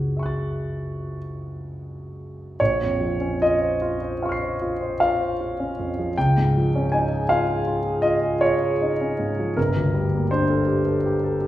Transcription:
0.00 2.57 F#1 soft
0.00 2.60 C#2 soft
0.00 1.17 F#4 soft
0.00 2.62 G#4 medium
0.17 2.56 E5 soft
0.17 2.57 C#6 soft
0.23 2.59 F#6 soft
0.23 2.61 A6 soft
2.60 6.13 A#1 soft
2.60 3.42 C#5 medium
2.82 3.14 F2 soft
3.01 3.34 F3 soft
3.21 3.54 C#4 soft
3.42 3.75 F4 soft
3.42 4.99 D#5 medium
3.62 3.94 C5 soft
3.82 4.13 F4 soft
4.02 4.33 C5 soft
4.22 4.53 F4 soft
4.22 4.99 F5 soft
4.22 6.14 C#6 soft
4.29 6.16 F6 soft
4.29 6.17 C7 soft
4.42 4.73 C5 soft
4.62 4.92 F4 soft
4.81 5.12 C5 soft
5.00 5.31 F4 soft
5.00 6.17 F5 medium
5.21 5.51 C5 soft
5.41 5.71 F4 soft
5.60 5.90 C#4 soft
5.80 6.09 F2 soft
5.99 6.17 F3 soft
6.18 9.54 C#2 soft
6.18 6.93 G5 medium
6.38 6.67 G#2 soft
6.57 6.86 F3 soft
6.75 7.04 C#4 soft
6.92 7.22 D#4 soft
6.92 7.29 G#5 medium
7.12 7.41 G#4 soft
7.29 7.59 F4 soft
7.29 8.04 F5 medium
7.67 7.97 F4 soft
7.86 8.16 G#4 soft
8.02 8.34 F4 soft
8.02 8.41 D#5 medium
8.23 8.53 G#4 soft
8.41 8.72 F4 soft
8.41 9.56 C#5 medium
8.62 8.92 G#4 soft
8.81 9.12 D#4 soft
9.01 9.31 C#4 soft
9.19 9.50 G#2 soft
9.40 9.58 F3 soft
9.57 11.47 G1 soft
9.57 10.30 A#4 medium
9.76 10.05 D2 soft
9.94 10.23 G3 soft
10.14 10.42 A#3 soft
10.31 10.60 D4 soft
10.31 11.47 C5 medium
10.50 10.78 A4 soft
10.67 10.96 G4 soft
10.86 11.15 A4 soft
11.06 11.35 G4 soft
11.24 11.47 A4 soft
11.41 11.47 G4 soft

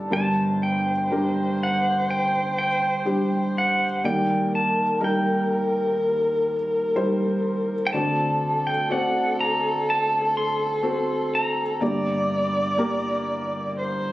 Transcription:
0.00 0.11 G3 medium
0.00 0.11 D4 medium
0.00 0.12 A4 medium
0.00 0.12 D5 medium
0.00 0.12 A5 medium
0.09 4.00 G1 medium
0.09 4.00 G2 soft
0.09 0.89 G3 medium
0.09 0.89 D4 medium
0.09 0.90 A#4 medium
0.09 4.05 C5 medium
0.13 0.63 A5 loud
0.63 1.63 G5 medium
1.11 2.66 G3 medium
1.11 2.66 D4 medium
1.11 2.66 A#4 medium
1.63 2.10 F#5 medium
2.10 2.55 G5 medium
2.58 3.51 G5 medium
3.05 3.83 G3 medium
3.05 3.83 D4 medium
3.05 3.83 G4 medium
3.58 4.05 F#5 medium
4.04 7.89 D#2 medium
4.04 7.89 D#3 medium
4.04 4.81 G3 medium
4.04 4.81 D#4 medium
4.04 7.92 A#4 loud
4.04 4.82 D5 medium
4.04 4.54 G5 medium
4.55 4.99 A5 medium
5.00 6.55 G3 medium
5.00 6.55 D#4 medium
5.00 6.55 A#4 medium
5.04 5.96 G5 medium
6.96 7.73 G3 medium
6.96 7.73 D#4 medium
6.96 7.73 C5 medium
7.87 11.82 A4 loud
7.87 7.92 G5 medium
7.93 11.78 D2 medium
7.93 11.78 D3 medium
7.93 8.69 C4 medium
7.93 8.69 F#4 medium
7.93 8.70 D5 medium
7.93 8.66 A5 loud
8.67 8.88 G5 medium
8.90 10.44 C4 medium
8.90 10.44 F#4 medium
8.90 10.44 D5 medium
8.90 9.35 F#5 medium
9.41 9.84 A#5 loud
9.90 10.37 A5 medium
10.37 11.30 C6 medium
10.83 11.61 C4 medium
10.83 11.61 F#4 medium
10.83 11.61 A4 medium
11.35 13.26 A#5 medium
11.80 14.12 G1 soft
11.80 14.12 G2 soft
11.80 12.59 A#3 medium
11.80 12.59 G4 medium
11.80 13.77 D5 loud
11.80 12.59 D5 medium
12.78 14.12 A#3 medium
12.78 14.12 G4 medium
12.78 14.12 A#4 medium
13.78 14.12 C5 loud

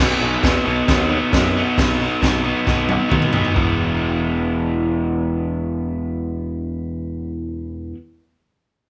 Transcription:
0.00 0.13 B1 medium
0.00 0.20 B2 medium
0.00 0.21 F#3 loud
0.00 0.22 B3 loud
0.00 0.23 D#4 loud
0.20 0.36 B1 medium
0.20 0.42 B2 medium
0.20 0.43 F#3 medium
0.20 0.43 B3 medium
0.20 0.44 D#4 loud
0.42 0.58 E2 medium
0.42 0.63 B2 loud
0.42 0.65 F#3 loud
0.42 0.65 B3 loud
0.42 0.66 D#4 loud
0.42 kick loud
0.42 snare loud
0.42 open hi-hat medium
0.64 0.81 B1 medium
0.64 0.86 B2 medium
0.64 0.86 F#3 medium
0.64 0.88 B3 medium
0.64 0.88 D#4 medium
0.87 1.18 D#2 medium
0.87 1.08 B2 medium
0.87 1.09 F#3 medium
0.87 1.11 B3 loud
0.87 1.11 D#4 loud
0.87 kick loud
0.87 snare loud
0.87 open hi-hat soft
1.09 1.30 B2 medium
1.09 1.30 F#3 medium
1.09 1.32 B3 loud
1.09 1.33 D#4 medium
1.31 1.62 F#2 medium
1.31 1.53 B2 medium
1.31 1.54 F#3 medium
1.31 1.56 B3 medium
1.31 1.56 D#4 loud
1.31 kick loud
1.31 snare loud
1.31 open hi-hat medium
1.55 1.76 B2 medium
1.55 1.77 F#3 medium
1.55 1.77 B3 medium
1.55 1.79 D#4 medium
1.77 2.07 B1 medium
1.77 1.97 B2 medium
1.77 1.99 F#3 medium
1.77 1.99 B3 loud
1.77 2.01 D#4 loud
1.77 kick loud
1.77 snare loud
1.77 open hi-hat medium
1.99 2.19 B2 medium
1.99 2.21 F#3 medium
1.99 2.21 B3 medium
1.99 2.22 D#4 loud
2.21 2.52 B1 medium
2.21 2.42 B2 medium
2.21 2.43 F#3 medium
2.21 2.44 B3 medium
2.21 2.45 D#4 loud
2.21 kick loud
2.21 snare loud
2.21 open hi-hat medium
2.43 2.65 B2 medium
2.43 2.67 F#3 medium
2.43 2.67 B3 medium
2.43 2.68 D#4 medium
2.66 2.97 B1 loud
2.66 2.87 B2 medium
2.66 2.88 F#3 medium
2.66 2.89 B3 loud
2.66 2.90 D#4 loud
2.66 kick loud
2.66 snare medium
2.89 3.07 B2 medium
2.89 3.08 F#3 medium
2.89 3.10 B3 medium
2.89 3.10 D#4 medium
2.89 high tom medium
3.09 3.41 B1 medium
3.09 3.30 B2 medium
3.09 3.31 F#3 medium
3.09 3.31 B3 loud
3.09 3.33 D#4 medium
3.09 kick loud
3.09 mid tom medium
3.22 mid tom medium
3.31 3.52 B2 medium
3.31 3.53 F#3 medium
3.31 3.54 B3 medium
3.31 3.55 D#4 medium
3.31 floor tom medium
3.45 floor tom medium
3.52 7.93 E3 medium
3.52 7.94 G#3 medium
3.52 7.96 B3 medium
3.52 7.97 E4 medium
3.56 7.93 E1 medium
3.56 kick loud

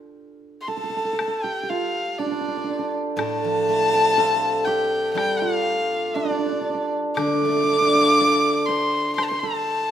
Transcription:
0.00 0.36 F4 medium
0.00 0.26 G4 medium
0.61 0.69 C6 medium
0.67 0.77 A4 medium
0.67 1.45 A5 medium
0.77 0.83 A4 medium
0.84 0.89 A4 medium
0.90 0.96 A4 soft
0.97 1.04 A4 medium
1.05 1.13 A4 soft
1.13 1.20 A4 medium
1.19 1.27 A4 soft
1.19 high woodblock medium
1.28 3.19 A4 medium
1.43 1.63 G4 medium
1.43 1.71 G5 medium
1.63 4.67 G4 medium
1.69 5.07 F4 medium
1.69 2.20 F5 medium
2.18 2.25 D4 medium
2.18 2.94 D5 medium
2.26 2.31 D4 medium
2.31 2.40 D4 medium
2.41 2.48 D4 soft
2.48 2.57 D4 soft
2.57 2.63 D4 soft
2.64 2.69 D4 soft
2.70 2.79 D4 soft
2.79 6.15 D4 medium
3.17 6.16 A2 medium
3.17 4.17 A4 medium
3.17 4.66 A5 loud
3.17 high woodblock medium
3.44 5.42 F3 soft
3.69 5.67 A3 medium
3.93 5.92 C4 medium
4.18 6.17 F4 medium
4.18 7.10 A4 medium
4.65 5.16 G4 medium
4.65 5.14 G5 medium
5.15 8.18 G3 medium
5.15 8.30 G4 medium
5.15 5.40 G5 loud
5.15 high woodblock medium
5.39 8.79 F4 medium
5.39 6.16 F5 loud
6.14 6.24 D4 medium
6.14 6.92 D5 medium
6.14 low woodblock soft
6.25 6.30 D4 medium
6.30 6.38 D4 medium
6.38 6.46 D4 soft
6.46 6.52 D4 soft
6.52 6.60 D4 soft
6.61 6.69 D4 soft
6.69 6.74 D4 soft
6.74 9.91 D4 medium
7.15 9.91 D3 medium
7.15 7.26 D5 medium
7.15 8.67 D6 loud
7.15 high woodblock medium
7.27 7.34 D5 medium
7.34 7.41 D5 medium
7.42 9.44 A3 soft
7.42 7.49 D5 soft
7.49 7.56 D5 medium
7.57 7.63 D5 soft
7.63 7.72 D5 medium
7.69 9.68 D4 soft
7.69 7.80 D5 medium
7.81 7.87 D5 medium
7.87 7.94 D5 medium
7.95 9.91 F4 soft
7.95 8.01 D5 medium
8.01 8.21 D5 medium
8.21 9.91 A4 soft
8.21 9.91 D5 medium
8.66 9.18 C5 medium
8.66 9.15 C6 loud
9.16 9.31 C5 medium
9.16 9.26 C6 loud
9.16 high woodblock medium
9.24 9.30 A5 medium
9.28 9.91 C5 medium
9.28 9.41 C6 loud
9.40 9.91 A4 medium
9.40 9.91 A5 loud

